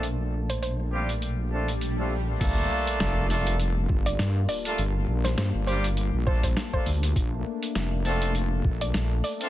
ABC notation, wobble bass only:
X:1
M:4/4
L:1/16
Q:"Swing 16ths" 1/4=101
K:Gm
V:1 name="Wobble bass" clef=bass
B,,,16 | G,,,2 z2 F,,,6 G,,,2 G,,2 z2 | G,,,2 B,,,2 G,, G,,,4 B,,,3 z2 D,,2 | B,,,2 z2 F,,,6 B,,,2 B,,,2 z2 |]